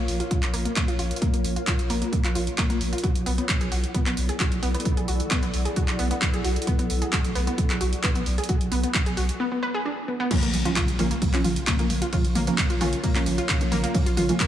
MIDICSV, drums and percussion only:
0, 0, Header, 1, 2, 480
1, 0, Start_track
1, 0, Tempo, 454545
1, 1285, Time_signature, 4, 2, 24, 8
1, 15281, End_track
2, 0, Start_track
2, 0, Title_t, "Drums"
2, 87, Note_on_c, 9, 46, 97
2, 193, Note_off_c, 9, 46, 0
2, 212, Note_on_c, 9, 42, 51
2, 317, Note_off_c, 9, 42, 0
2, 326, Note_on_c, 9, 36, 118
2, 327, Note_on_c, 9, 42, 82
2, 432, Note_off_c, 9, 36, 0
2, 433, Note_off_c, 9, 42, 0
2, 452, Note_on_c, 9, 39, 60
2, 452, Note_on_c, 9, 42, 53
2, 557, Note_off_c, 9, 39, 0
2, 557, Note_off_c, 9, 42, 0
2, 567, Note_on_c, 9, 46, 105
2, 672, Note_off_c, 9, 46, 0
2, 691, Note_on_c, 9, 42, 55
2, 797, Note_off_c, 9, 42, 0
2, 806, Note_on_c, 9, 36, 126
2, 806, Note_on_c, 9, 39, 116
2, 806, Note_on_c, 9, 42, 78
2, 911, Note_off_c, 9, 36, 0
2, 912, Note_off_c, 9, 39, 0
2, 912, Note_off_c, 9, 42, 0
2, 931, Note_on_c, 9, 42, 54
2, 1037, Note_off_c, 9, 42, 0
2, 1046, Note_on_c, 9, 46, 100
2, 1152, Note_off_c, 9, 46, 0
2, 1171, Note_on_c, 9, 42, 48
2, 1229, Note_off_c, 9, 42, 0
2, 1229, Note_on_c, 9, 42, 64
2, 1286, Note_off_c, 9, 42, 0
2, 1286, Note_on_c, 9, 36, 127
2, 1286, Note_on_c, 9, 42, 79
2, 1391, Note_off_c, 9, 36, 0
2, 1392, Note_off_c, 9, 42, 0
2, 1411, Note_on_c, 9, 42, 56
2, 1517, Note_off_c, 9, 42, 0
2, 1526, Note_on_c, 9, 46, 110
2, 1632, Note_off_c, 9, 46, 0
2, 1651, Note_on_c, 9, 42, 50
2, 1757, Note_off_c, 9, 42, 0
2, 1766, Note_on_c, 9, 36, 127
2, 1766, Note_on_c, 9, 39, 117
2, 1766, Note_on_c, 9, 42, 82
2, 1871, Note_off_c, 9, 36, 0
2, 1872, Note_off_c, 9, 39, 0
2, 1872, Note_off_c, 9, 42, 0
2, 1891, Note_on_c, 9, 42, 53
2, 1996, Note_off_c, 9, 42, 0
2, 2006, Note_on_c, 9, 46, 97
2, 2111, Note_off_c, 9, 46, 0
2, 2130, Note_on_c, 9, 42, 51
2, 2236, Note_off_c, 9, 42, 0
2, 2245, Note_on_c, 9, 36, 119
2, 2246, Note_on_c, 9, 42, 74
2, 2351, Note_off_c, 9, 36, 0
2, 2352, Note_off_c, 9, 42, 0
2, 2370, Note_on_c, 9, 39, 58
2, 2370, Note_on_c, 9, 42, 51
2, 2476, Note_off_c, 9, 39, 0
2, 2476, Note_off_c, 9, 42, 0
2, 2486, Note_on_c, 9, 46, 105
2, 2591, Note_off_c, 9, 46, 0
2, 2610, Note_on_c, 9, 42, 51
2, 2716, Note_off_c, 9, 42, 0
2, 2725, Note_on_c, 9, 36, 127
2, 2726, Note_on_c, 9, 39, 113
2, 2726, Note_on_c, 9, 42, 76
2, 2831, Note_off_c, 9, 36, 0
2, 2831, Note_off_c, 9, 39, 0
2, 2831, Note_off_c, 9, 42, 0
2, 2850, Note_on_c, 9, 42, 52
2, 2956, Note_off_c, 9, 42, 0
2, 2966, Note_on_c, 9, 46, 94
2, 3071, Note_off_c, 9, 46, 0
2, 3091, Note_on_c, 9, 42, 49
2, 3149, Note_off_c, 9, 42, 0
2, 3149, Note_on_c, 9, 42, 66
2, 3205, Note_on_c, 9, 36, 116
2, 3206, Note_off_c, 9, 42, 0
2, 3206, Note_on_c, 9, 42, 75
2, 3311, Note_off_c, 9, 36, 0
2, 3312, Note_off_c, 9, 42, 0
2, 3331, Note_on_c, 9, 42, 53
2, 3437, Note_off_c, 9, 42, 0
2, 3446, Note_on_c, 9, 46, 107
2, 3552, Note_off_c, 9, 46, 0
2, 3571, Note_on_c, 9, 42, 49
2, 3676, Note_off_c, 9, 42, 0
2, 3686, Note_on_c, 9, 36, 126
2, 3686, Note_on_c, 9, 39, 121
2, 3686, Note_on_c, 9, 42, 81
2, 3791, Note_off_c, 9, 36, 0
2, 3791, Note_off_c, 9, 39, 0
2, 3791, Note_off_c, 9, 42, 0
2, 3811, Note_on_c, 9, 42, 51
2, 3916, Note_off_c, 9, 42, 0
2, 3925, Note_on_c, 9, 46, 94
2, 4031, Note_off_c, 9, 46, 0
2, 4051, Note_on_c, 9, 42, 52
2, 4157, Note_off_c, 9, 42, 0
2, 4166, Note_on_c, 9, 36, 108
2, 4166, Note_on_c, 9, 42, 74
2, 4271, Note_off_c, 9, 36, 0
2, 4272, Note_off_c, 9, 42, 0
2, 4291, Note_on_c, 9, 39, 58
2, 4291, Note_on_c, 9, 42, 51
2, 4396, Note_off_c, 9, 39, 0
2, 4396, Note_off_c, 9, 42, 0
2, 4405, Note_on_c, 9, 46, 103
2, 4511, Note_off_c, 9, 46, 0
2, 4530, Note_on_c, 9, 42, 52
2, 4636, Note_off_c, 9, 42, 0
2, 4645, Note_on_c, 9, 36, 123
2, 4645, Note_on_c, 9, 39, 111
2, 4645, Note_on_c, 9, 42, 76
2, 4751, Note_off_c, 9, 36, 0
2, 4751, Note_off_c, 9, 39, 0
2, 4751, Note_off_c, 9, 42, 0
2, 4770, Note_on_c, 9, 42, 51
2, 4876, Note_off_c, 9, 42, 0
2, 4885, Note_on_c, 9, 46, 94
2, 4991, Note_off_c, 9, 46, 0
2, 5011, Note_on_c, 9, 42, 47
2, 5068, Note_off_c, 9, 42, 0
2, 5068, Note_on_c, 9, 42, 62
2, 5126, Note_off_c, 9, 42, 0
2, 5126, Note_on_c, 9, 36, 113
2, 5126, Note_on_c, 9, 42, 80
2, 5231, Note_off_c, 9, 36, 0
2, 5231, Note_off_c, 9, 42, 0
2, 5250, Note_on_c, 9, 42, 50
2, 5356, Note_off_c, 9, 42, 0
2, 5365, Note_on_c, 9, 46, 106
2, 5471, Note_off_c, 9, 46, 0
2, 5490, Note_on_c, 9, 42, 52
2, 5596, Note_off_c, 9, 42, 0
2, 5606, Note_on_c, 9, 36, 116
2, 5606, Note_on_c, 9, 39, 124
2, 5606, Note_on_c, 9, 42, 79
2, 5711, Note_off_c, 9, 36, 0
2, 5711, Note_off_c, 9, 39, 0
2, 5711, Note_off_c, 9, 42, 0
2, 5730, Note_on_c, 9, 42, 48
2, 5836, Note_off_c, 9, 42, 0
2, 5846, Note_on_c, 9, 46, 86
2, 5952, Note_off_c, 9, 46, 0
2, 5971, Note_on_c, 9, 42, 49
2, 6076, Note_off_c, 9, 42, 0
2, 6086, Note_on_c, 9, 36, 109
2, 6086, Note_on_c, 9, 42, 76
2, 6191, Note_off_c, 9, 36, 0
2, 6192, Note_off_c, 9, 42, 0
2, 6210, Note_on_c, 9, 39, 59
2, 6210, Note_on_c, 9, 42, 50
2, 6316, Note_off_c, 9, 39, 0
2, 6316, Note_off_c, 9, 42, 0
2, 6326, Note_on_c, 9, 46, 93
2, 6431, Note_off_c, 9, 46, 0
2, 6450, Note_on_c, 9, 42, 51
2, 6556, Note_off_c, 9, 42, 0
2, 6566, Note_on_c, 9, 36, 117
2, 6566, Note_on_c, 9, 39, 113
2, 6566, Note_on_c, 9, 42, 75
2, 6671, Note_off_c, 9, 36, 0
2, 6671, Note_off_c, 9, 39, 0
2, 6671, Note_off_c, 9, 42, 0
2, 6691, Note_on_c, 9, 42, 50
2, 6796, Note_off_c, 9, 42, 0
2, 6806, Note_on_c, 9, 46, 90
2, 6911, Note_off_c, 9, 46, 0
2, 6930, Note_on_c, 9, 42, 46
2, 6988, Note_off_c, 9, 42, 0
2, 6988, Note_on_c, 9, 42, 61
2, 7046, Note_off_c, 9, 42, 0
2, 7046, Note_on_c, 9, 36, 117
2, 7046, Note_on_c, 9, 42, 80
2, 7151, Note_off_c, 9, 36, 0
2, 7151, Note_off_c, 9, 42, 0
2, 7170, Note_on_c, 9, 42, 54
2, 7276, Note_off_c, 9, 42, 0
2, 7286, Note_on_c, 9, 46, 105
2, 7391, Note_off_c, 9, 46, 0
2, 7411, Note_on_c, 9, 42, 51
2, 7516, Note_off_c, 9, 42, 0
2, 7526, Note_on_c, 9, 36, 113
2, 7526, Note_on_c, 9, 39, 126
2, 7526, Note_on_c, 9, 42, 81
2, 7631, Note_off_c, 9, 36, 0
2, 7632, Note_off_c, 9, 39, 0
2, 7632, Note_off_c, 9, 42, 0
2, 7651, Note_on_c, 9, 42, 52
2, 7756, Note_off_c, 9, 42, 0
2, 7767, Note_on_c, 9, 46, 86
2, 7872, Note_off_c, 9, 46, 0
2, 7891, Note_on_c, 9, 42, 53
2, 7996, Note_off_c, 9, 42, 0
2, 8006, Note_on_c, 9, 36, 108
2, 8006, Note_on_c, 9, 42, 78
2, 8111, Note_off_c, 9, 36, 0
2, 8112, Note_off_c, 9, 42, 0
2, 8131, Note_on_c, 9, 39, 63
2, 8131, Note_on_c, 9, 42, 50
2, 8236, Note_off_c, 9, 39, 0
2, 8236, Note_off_c, 9, 42, 0
2, 8245, Note_on_c, 9, 46, 98
2, 8351, Note_off_c, 9, 46, 0
2, 8370, Note_on_c, 9, 42, 52
2, 8476, Note_off_c, 9, 42, 0
2, 8485, Note_on_c, 9, 36, 117
2, 8485, Note_on_c, 9, 39, 121
2, 8485, Note_on_c, 9, 42, 72
2, 8591, Note_off_c, 9, 36, 0
2, 8591, Note_off_c, 9, 39, 0
2, 8591, Note_off_c, 9, 42, 0
2, 8610, Note_on_c, 9, 42, 54
2, 8716, Note_off_c, 9, 42, 0
2, 8725, Note_on_c, 9, 46, 88
2, 8830, Note_off_c, 9, 46, 0
2, 8850, Note_on_c, 9, 42, 47
2, 8908, Note_off_c, 9, 42, 0
2, 8908, Note_on_c, 9, 42, 66
2, 8965, Note_off_c, 9, 42, 0
2, 8965, Note_on_c, 9, 42, 81
2, 8966, Note_on_c, 9, 36, 116
2, 9070, Note_off_c, 9, 42, 0
2, 9071, Note_off_c, 9, 36, 0
2, 9090, Note_on_c, 9, 42, 54
2, 9196, Note_off_c, 9, 42, 0
2, 9205, Note_on_c, 9, 46, 106
2, 9311, Note_off_c, 9, 46, 0
2, 9330, Note_on_c, 9, 42, 53
2, 9435, Note_off_c, 9, 42, 0
2, 9445, Note_on_c, 9, 39, 127
2, 9445, Note_on_c, 9, 42, 85
2, 9446, Note_on_c, 9, 36, 116
2, 9550, Note_off_c, 9, 39, 0
2, 9550, Note_off_c, 9, 42, 0
2, 9551, Note_off_c, 9, 36, 0
2, 9570, Note_on_c, 9, 42, 56
2, 9676, Note_off_c, 9, 42, 0
2, 9685, Note_on_c, 9, 46, 88
2, 9791, Note_off_c, 9, 46, 0
2, 9810, Note_on_c, 9, 42, 51
2, 9916, Note_off_c, 9, 42, 0
2, 10886, Note_on_c, 9, 36, 124
2, 10886, Note_on_c, 9, 42, 85
2, 10886, Note_on_c, 9, 47, 92
2, 10886, Note_on_c, 9, 49, 106
2, 10886, Note_on_c, 9, 51, 71
2, 10991, Note_off_c, 9, 36, 0
2, 10991, Note_off_c, 9, 42, 0
2, 10991, Note_off_c, 9, 47, 0
2, 10991, Note_off_c, 9, 49, 0
2, 10991, Note_off_c, 9, 51, 0
2, 11011, Note_on_c, 9, 42, 58
2, 11116, Note_off_c, 9, 42, 0
2, 11125, Note_on_c, 9, 46, 111
2, 11125, Note_on_c, 9, 47, 65
2, 11231, Note_off_c, 9, 46, 0
2, 11231, Note_off_c, 9, 47, 0
2, 11251, Note_on_c, 9, 42, 54
2, 11356, Note_off_c, 9, 42, 0
2, 11366, Note_on_c, 9, 36, 127
2, 11366, Note_on_c, 9, 39, 127
2, 11366, Note_on_c, 9, 42, 87
2, 11366, Note_on_c, 9, 47, 90
2, 11366, Note_on_c, 9, 51, 73
2, 11471, Note_off_c, 9, 36, 0
2, 11471, Note_off_c, 9, 39, 0
2, 11471, Note_off_c, 9, 42, 0
2, 11471, Note_off_c, 9, 47, 0
2, 11471, Note_off_c, 9, 51, 0
2, 11491, Note_on_c, 9, 42, 57
2, 11596, Note_off_c, 9, 42, 0
2, 11606, Note_on_c, 9, 46, 98
2, 11606, Note_on_c, 9, 47, 89
2, 11712, Note_off_c, 9, 46, 0
2, 11712, Note_off_c, 9, 47, 0
2, 11731, Note_on_c, 9, 42, 55
2, 11836, Note_off_c, 9, 42, 0
2, 11846, Note_on_c, 9, 36, 114
2, 11846, Note_on_c, 9, 42, 83
2, 11846, Note_on_c, 9, 47, 66
2, 11846, Note_on_c, 9, 51, 72
2, 11952, Note_off_c, 9, 36, 0
2, 11952, Note_off_c, 9, 42, 0
2, 11952, Note_off_c, 9, 47, 0
2, 11952, Note_off_c, 9, 51, 0
2, 11971, Note_on_c, 9, 39, 64
2, 11971, Note_on_c, 9, 42, 55
2, 12076, Note_off_c, 9, 39, 0
2, 12076, Note_off_c, 9, 42, 0
2, 12086, Note_on_c, 9, 46, 99
2, 12086, Note_on_c, 9, 47, 87
2, 12191, Note_off_c, 9, 46, 0
2, 12191, Note_off_c, 9, 47, 0
2, 12211, Note_on_c, 9, 42, 58
2, 12316, Note_off_c, 9, 42, 0
2, 12326, Note_on_c, 9, 36, 122
2, 12326, Note_on_c, 9, 39, 127
2, 12326, Note_on_c, 9, 42, 82
2, 12326, Note_on_c, 9, 47, 89
2, 12326, Note_on_c, 9, 51, 66
2, 12432, Note_off_c, 9, 36, 0
2, 12432, Note_off_c, 9, 39, 0
2, 12432, Note_off_c, 9, 42, 0
2, 12432, Note_off_c, 9, 47, 0
2, 12432, Note_off_c, 9, 51, 0
2, 12451, Note_on_c, 9, 42, 55
2, 12556, Note_off_c, 9, 42, 0
2, 12566, Note_on_c, 9, 46, 97
2, 12566, Note_on_c, 9, 47, 63
2, 12671, Note_off_c, 9, 46, 0
2, 12671, Note_off_c, 9, 47, 0
2, 12690, Note_on_c, 9, 42, 62
2, 12796, Note_off_c, 9, 42, 0
2, 12806, Note_on_c, 9, 36, 121
2, 12806, Note_on_c, 9, 42, 86
2, 12806, Note_on_c, 9, 47, 93
2, 12806, Note_on_c, 9, 51, 66
2, 12911, Note_off_c, 9, 42, 0
2, 12911, Note_off_c, 9, 47, 0
2, 12911, Note_off_c, 9, 51, 0
2, 12912, Note_off_c, 9, 36, 0
2, 12931, Note_on_c, 9, 42, 55
2, 13036, Note_off_c, 9, 42, 0
2, 13046, Note_on_c, 9, 46, 114
2, 13046, Note_on_c, 9, 47, 90
2, 13152, Note_off_c, 9, 46, 0
2, 13152, Note_off_c, 9, 47, 0
2, 13171, Note_on_c, 9, 42, 54
2, 13276, Note_off_c, 9, 42, 0
2, 13286, Note_on_c, 9, 36, 123
2, 13286, Note_on_c, 9, 39, 123
2, 13286, Note_on_c, 9, 42, 88
2, 13286, Note_on_c, 9, 47, 65
2, 13286, Note_on_c, 9, 51, 71
2, 13392, Note_off_c, 9, 36, 0
2, 13392, Note_off_c, 9, 39, 0
2, 13392, Note_off_c, 9, 42, 0
2, 13392, Note_off_c, 9, 47, 0
2, 13392, Note_off_c, 9, 51, 0
2, 13410, Note_on_c, 9, 42, 55
2, 13516, Note_off_c, 9, 42, 0
2, 13526, Note_on_c, 9, 46, 101
2, 13526, Note_on_c, 9, 47, 89
2, 13631, Note_off_c, 9, 46, 0
2, 13631, Note_off_c, 9, 47, 0
2, 13651, Note_on_c, 9, 42, 57
2, 13756, Note_off_c, 9, 42, 0
2, 13766, Note_on_c, 9, 36, 114
2, 13766, Note_on_c, 9, 42, 86
2, 13766, Note_on_c, 9, 47, 89
2, 13766, Note_on_c, 9, 51, 66
2, 13871, Note_off_c, 9, 42, 0
2, 13871, Note_off_c, 9, 47, 0
2, 13871, Note_off_c, 9, 51, 0
2, 13872, Note_off_c, 9, 36, 0
2, 13891, Note_on_c, 9, 39, 60
2, 13891, Note_on_c, 9, 42, 54
2, 13996, Note_off_c, 9, 39, 0
2, 13996, Note_off_c, 9, 42, 0
2, 14006, Note_on_c, 9, 46, 108
2, 14006, Note_on_c, 9, 47, 58
2, 14112, Note_off_c, 9, 46, 0
2, 14112, Note_off_c, 9, 47, 0
2, 14131, Note_on_c, 9, 42, 55
2, 14236, Note_off_c, 9, 42, 0
2, 14246, Note_on_c, 9, 36, 126
2, 14246, Note_on_c, 9, 39, 122
2, 14246, Note_on_c, 9, 42, 81
2, 14246, Note_on_c, 9, 47, 88
2, 14246, Note_on_c, 9, 51, 65
2, 14351, Note_off_c, 9, 39, 0
2, 14351, Note_off_c, 9, 42, 0
2, 14351, Note_off_c, 9, 47, 0
2, 14351, Note_off_c, 9, 51, 0
2, 14352, Note_off_c, 9, 36, 0
2, 14371, Note_on_c, 9, 42, 55
2, 14476, Note_off_c, 9, 42, 0
2, 14486, Note_on_c, 9, 46, 99
2, 14486, Note_on_c, 9, 47, 91
2, 14592, Note_off_c, 9, 46, 0
2, 14592, Note_off_c, 9, 47, 0
2, 14612, Note_on_c, 9, 42, 66
2, 14717, Note_off_c, 9, 42, 0
2, 14726, Note_on_c, 9, 36, 126
2, 14727, Note_on_c, 9, 42, 82
2, 14727, Note_on_c, 9, 47, 65
2, 14727, Note_on_c, 9, 51, 68
2, 14832, Note_off_c, 9, 36, 0
2, 14832, Note_off_c, 9, 42, 0
2, 14832, Note_off_c, 9, 47, 0
2, 14832, Note_off_c, 9, 51, 0
2, 14851, Note_on_c, 9, 42, 58
2, 14957, Note_off_c, 9, 42, 0
2, 14966, Note_on_c, 9, 46, 118
2, 14966, Note_on_c, 9, 47, 94
2, 15072, Note_off_c, 9, 46, 0
2, 15072, Note_off_c, 9, 47, 0
2, 15091, Note_on_c, 9, 42, 53
2, 15197, Note_off_c, 9, 42, 0
2, 15206, Note_on_c, 9, 36, 127
2, 15206, Note_on_c, 9, 39, 122
2, 15206, Note_on_c, 9, 42, 87
2, 15206, Note_on_c, 9, 47, 97
2, 15206, Note_on_c, 9, 51, 67
2, 15281, Note_off_c, 9, 36, 0
2, 15281, Note_off_c, 9, 39, 0
2, 15281, Note_off_c, 9, 42, 0
2, 15281, Note_off_c, 9, 47, 0
2, 15281, Note_off_c, 9, 51, 0
2, 15281, End_track
0, 0, End_of_file